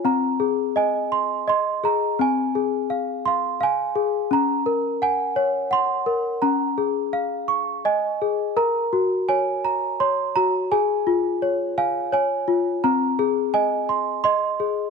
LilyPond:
\new Staff \with { instrumentName = "Celesta" } { \time 3/4 \key aes \mixolydian \tempo 4 = 85 << { bes''4 aes''4 c'''8 bes''8 | aes''4. f''8 aes''4 | bes''4 aes''4 c'''4 | bes''2 aes''4 |
bes''4 aes''4 c'''8 bes''8 | aes''4. f''8 aes''4 | bes''4 aes''4 c'''4 | } \\ { c'8 aes'8 ees''8 c'''8 ees''8 aes'8 | c'8 aes'8 f''8 c'''8 f''8 aes'8 | des'8 bes'8 ges''8 des''8 ges''8 bes'8 | des'8 aes'8 f''8 des'''8 ees''8 aes'8 |
bes'8 ges'8 des''8 bes''8 des''8 ges'8 | aes'8 f'8 des''8 aes''8 des''8 f'8 | c'8 aes'8 ees''8 c'''8 ees''8 aes'8 | } >> }